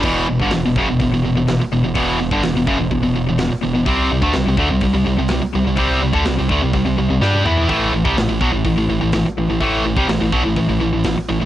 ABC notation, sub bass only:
X:1
M:4/4
L:1/16
Q:1/4=126
K:Em
V:1 name="Sub bass" clef=bass
E,,,2 E,,, G,,, E,,, E,,, F,,, E,,, E,,, E,,, E,,, E,,, E,,, E,,, E,,, E,,, | E,,,2 E,,, G,,, E,,, E,,, F,,, E,,, E,,, E,,, E,,, E,,, E,,, E,,, E,,, E,,, | C,,2 C,, D,, C,, C,, D,, C,, C,, C,, C,, C,, C,, C,, C,, C,, | C,,2 C,, D,, C,, C,, D,, C,, C,, C,, C,, C,, G,,2 E,,2 |
A,,,2 A,,, C,, A,,, A,,, B,,, A,,, A,,, A,,, A,,, A,,, A,,, A,,, A,,, A,,, | A,,,2 A,,, C,, A,,, A,,, B,,, A,,, A,,, A,,, A,,, A,,, A,,, A,,, A,,, A,,, |]